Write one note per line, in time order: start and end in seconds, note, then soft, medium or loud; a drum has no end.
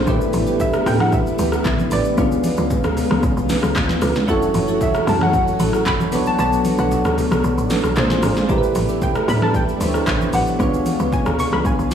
0.00 2.14 D3 medium
0.00 0.11 D4 medium
0.06 0.32 A1 loud
0.06 2.16 G3 medium
0.06 2.13 A3 medium
0.06 2.16 A3 medium
0.06 4.24 B3 medium
0.06 0.14 C#4 medium
0.06 0.20 D4 loud
0.06 2.16 E4 medium
0.06 2.14 E4 medium
0.06 0.21 G4 medium
0.06 2.15 G4 medium
0.06 0.21 B4 loud
0.06 2.15 B4 medium
0.06 kick loud
0.06 shaker medium
0.13 2.16 D4 medium
0.21 shaker medium
0.33 0.83 A1 medium
0.33 open hi-hat medium
0.33 high conga medium
0.33 shaker medium
0.47 0.59 D4 medium
0.47 0.60 G4 medium
0.47 0.60 B4 medium
0.47 shaker medium
0.60 0.85 E5 loud
0.60 kick medium
0.60 low conga medium
0.60 shaker medium
0.73 cross-stick loud
0.73 shaker soft
0.86 1.35 A2 loud
0.86 1.01 G5 loud
0.86 cross-stick loud
0.86 open hi-hat soft
0.86 low conga medium
0.86 shaker medium
1.00 1.12 F#5 loud
1.00 cross-stick loud
1.00 high conga medium
1.12 1.62 E5 medium
1.12 kick loud
1.12 shaker medium
1.27 shaker medium
1.39 1.64 D2 medium
1.39 1.52 D4 medium
1.39 1.52 G4 medium
1.39 1.52 B4 medium
1.39 open hi-hat medium
1.39 high conga medium
1.39 shaker loud
1.52 cross-stick medium
1.52 shaker medium
1.65 1.90 A1 loud
1.65 kick loud
1.65 clap medium
1.65 low conga medium
1.65 shaker medium
1.78 high conga medium
1.78 shaker medium
1.91 2.16 A1 medium
1.91 2.16 D4 medium
1.91 2.16 G4 medium
1.91 2.16 B4 medium
1.91 3.46 D5 loud
1.91 open hi-hat medium
1.91 high conga medium
1.91 low conga medium
1.91 shaker medium
2.05 shaker soft
2.17 2.55 C#2 loud
2.17 4.26 C#3 medium
2.17 4.26 D3 medium
2.17 4.26 G#3 medium
2.17 4.24 B3 medium
2.17 4.26 C#4 medium
2.17 2.31 D4 loud
2.17 4.24 D4 medium
2.17 2.31 F4 medium
2.17 4.26 F4 loud
2.17 4.25 F4 medium
2.17 4.25 G#4 medium
2.17 2.31 B4 loud
2.17 kick loud
2.17 shaker medium
2.32 shaker medium
2.44 open hi-hat medium
2.44 high conga medium
2.44 shaker medium
2.57 2.83 C#2 loud
2.57 2.70 D4 medium
2.57 2.70 F4 medium
2.57 2.70 B4 medium
2.57 shaker medium
2.70 kick medium
2.70 low conga medium
2.70 shaker medium
2.84 3.09 D2 medium
2.84 cross-stick loud
2.84 shaker soft
2.97 open hi-hat soft
2.97 low conga medium
2.97 shaker medium
3.10 3.22 C#2 loud
3.10 cross-stick loud
3.10 high conga medium
3.23 3.36 C#2 loud
3.23 kick loud
3.23 shaker medium
3.37 3.61 B1 medium
3.37 shaker medium
3.49 3.63 D4 medium
3.49 3.63 F4 medium
3.49 3.63 B4 medium
3.49 snare medium
3.49 open hi-hat medium
3.49 high conga medium
3.49 shaker loud
3.63 3.75 C#2 loud
3.63 cross-stick loud
3.63 shaker medium
3.75 4.00 D2 loud
3.75 kick medium
3.75 clap medium
3.75 low conga medium
3.75 shaker medium
3.89 snare medium
3.89 high conga medium
3.89 shaker medium
4.02 4.27 C#2 loud
4.02 4.26 D4 medium
4.02 4.26 F4 medium
4.02 4.26 B4 medium
4.02 cross-stick loud
4.02 open hi-hat medium
4.02 high conga medium
4.02 low conga medium
4.02 shaker medium
4.15 snare medium
4.15 shaker soft
4.27 4.53 F#1 loud
4.27 6.11 E3 medium
4.27 7.93 F#3 medium
4.27 6.11 A3 medium
4.27 6.08 C#4 medium
4.27 6.11 C#4 medium
4.27 6.09 E4 medium
4.27 4.42 E4 loud
4.27 7.93 F#4 loud
4.27 4.42 F#4 medium
4.27 6.09 F#4 medium
4.27 4.42 A4 loud
4.27 6.10 A4 medium
4.27 6.10 C#5 medium
4.27 kick loud
4.27 shaker medium
4.42 shaker medium
4.54 5.04 F#1 medium
4.54 open hi-hat medium
4.54 high conga medium
4.54 shaker medium
4.68 4.80 E4 medium
4.68 4.81 F#4 medium
4.68 4.81 A4 medium
4.68 shaker soft
4.81 5.09 E5 medium
4.81 kick medium
4.81 low conga medium
4.81 shaker medium
4.94 cross-stick loud
4.94 shaker soft
5.07 5.56 F#2 loud
5.07 5.21 A5 loud
5.07 cross-stick medium
5.07 open hi-hat soft
5.07 low conga medium
5.07 shaker medium
5.21 5.83 F#5 medium
5.21 cross-stick loud
5.21 high conga medium
5.33 kick loud
5.33 shaker medium
5.48 shaker soft
5.60 5.84 A1 medium
5.60 5.73 E4 medium
5.60 5.73 F#4 medium
5.60 5.73 A4 medium
5.60 open hi-hat medium
5.60 high conga medium
5.60 shaker loud
5.73 cross-stick medium
5.73 shaker medium
5.86 6.14 F#1 loud
5.86 6.24 B5 loud
5.86 kick loud
5.86 clap loud
5.86 low conga medium
5.86 shaker medium
6.00 high conga medium
6.00 shaker medium
6.11 6.37 B1 loud
6.11 7.95 A3 medium
6.11 7.93 B3 medium
6.11 7.95 B3 medium
6.11 6.37 D4 medium
6.11 7.93 D4 medium
6.11 11.94 D4 medium
6.11 7.93 F#4 medium
6.11 6.37 A4 medium
6.11 7.94 A4 medium
6.11 6.37 B4 medium
6.11 7.94 C#5 medium
6.11 open hi-hat medium
6.11 high conga medium
6.11 low conga medium
6.11 shaker medium
6.26 6.39 A5 loud
6.26 shaker soft
6.38 6.76 B1 loud
6.38 6.52 D4 loud
6.38 6.52 A4 medium
6.38 6.52 B4 loud
6.38 6.77 A5 loud
6.38 shaker medium
6.53 shaker medium
6.65 open hi-hat medium
6.65 high conga medium
6.65 shaker medium
6.78 7.03 B1 loud
6.78 6.91 D4 medium
6.78 6.91 A4 medium
6.78 6.91 B4 medium
6.78 7.81 F#5 medium
6.78 shaker medium
6.92 low conga medium
6.92 shaker medium
7.05 7.30 D2 medium
7.05 cross-stick loud
7.05 shaker soft
7.18 open hi-hat soft
7.18 low conga medium
7.18 shaker medium
7.31 7.43 B1 medium
7.31 cross-stick loud
7.31 high conga medium
7.31 shaker medium
7.44 7.57 B1 loud
7.44 shaker medium
7.58 7.82 A1 medium
7.58 shaker medium
7.70 7.84 D4 medium
7.70 7.84 A4 medium
7.70 7.84 B4 medium
7.70 snare medium
7.70 open hi-hat medium
7.70 high conga medium
7.70 shaker loud
7.84 7.96 B1 medium
7.84 cross-stick loud
7.84 shaker medium
7.96 8.21 A#1 loud
7.96 8.49 G#3 medium
7.96 8.49 A#3 medium
7.96 8.49 C4 medium
7.96 8.48 D4 medium
7.96 8.49 F4 medium
7.96 8.50 F4 medium
7.96 8.50 G#4 medium
7.96 8.50 C5 medium
7.96 clap medium
7.96 low conga medium
7.96 shaker medium
8.10 snare medium
8.10 high conga medium
8.10 shaker medium
8.22 8.48 G#1 loud
8.22 8.47 D4 medium
8.22 8.47 G#4 medium
8.22 8.47 C5 medium
8.22 cross-stick loud
8.22 open hi-hat medium
8.22 high conga medium
8.22 low conga medium
8.22 shaker medium
8.36 snare medium
8.36 shaker soft
8.48 8.74 A1 loud
8.48 10.58 G3 medium
8.48 9.78 A3 medium
8.48 10.58 A3 medium
8.48 11.94 B3 medium
8.48 8.62 D4 loud
8.48 9.78 D4 medium
8.48 10.58 E4 medium
8.48 9.78 E4 medium
8.48 8.63 G4 medium
8.48 9.79 G4 medium
8.48 8.57 A#4 medium
8.48 8.63 B4 loud
8.48 kick loud
8.48 shaker medium
8.58 9.83 B4 medium
8.63 shaker medium
8.75 9.25 A1 loud
8.75 open hi-hat medium
8.75 high conga medium
8.75 shaker medium
8.89 9.01 D4 medium
8.89 9.02 G4 medium
8.89 9.02 B4 medium
8.89 shaker medium
9.02 9.27 G5 medium
9.02 kick medium
9.02 low conga medium
9.02 shaker medium
9.15 cross-stick loud
9.15 shaker soft
9.28 9.77 A2 loud
9.28 9.42 B5 loud
9.28 cross-stick medium
9.28 open hi-hat soft
9.28 low conga medium
9.28 shaker medium
9.41 9.54 A5 medium
9.41 cross-stick loud
9.41 high conga medium
9.54 10.04 G5 medium
9.54 kick loud
9.54 shaker medium
9.69 shaker medium
9.80 10.05 D2 medium
9.80 10.60 A3 medium
9.80 9.94 D4 medium
9.80 10.58 D4 soft
9.80 10.60 E4 soft
9.80 9.94 G4 medium
9.80 10.60 G4 soft
9.80 9.94 B4 medium
9.80 9.88 C5 soft
9.80 open hi-hat medium
9.80 high conga medium
9.80 shaker loud
9.89 10.61 C#5 medium
9.94 cross-stick loud
9.94 shaker medium
10.07 10.32 A1 loud
10.07 kick loud
10.07 clap medium
10.07 low conga medium
10.07 shaker medium
10.20 high conga medium
10.20 shaker medium
10.33 10.58 A1 medium
10.33 10.58 D4 medium
10.33 10.58 G4 medium
10.33 10.58 B4 medium
10.33 10.59 F#5 loud
10.33 open hi-hat medium
10.33 high conga medium
10.33 low conga medium
10.33 shaker medium
10.47 shaker soft
10.59 10.97 C#2 loud
10.59 11.94 C#3 medium
10.59 11.94 G#3 medium
10.59 11.94 B3 medium
10.59 10.73 D4 loud
10.59 11.94 D4 medium
10.59 10.73 F4 medium
10.59 11.94 F4 loud
10.59 11.94 F4 medium
10.59 11.94 G#4 medium
10.59 10.73 B4 loud
10.59 11.94 C#5 medium
10.59 kick loud
10.59 shaker medium
10.74 shaker medium
10.86 open hi-hat medium
10.86 high conga medium
10.86 shaker medium
10.99 11.24 C#2 loud
10.99 11.12 D4 medium
10.99 11.12 F4 medium
10.99 11.12 B4 medium
10.99 shaker medium
11.12 11.40 G#5 medium
11.12 kick medium
11.12 low conga medium
11.12 shaker medium
11.26 11.51 D2 medium
11.26 cross-stick loud
11.26 shaker soft
11.39 11.53 C#6 loud
11.39 open hi-hat soft
11.39 low conga medium
11.39 shaker medium
11.52 11.64 C#2 medium
11.52 11.65 B5 loud
11.52 cross-stick loud
11.52 high conga medium
11.65 11.78 C#2 loud
11.65 11.94 G#5 medium
11.65 kick loud
11.65 shaker medium
11.79 11.94 B1 medium
11.79 shaker medium
11.91 11.94 D4 medium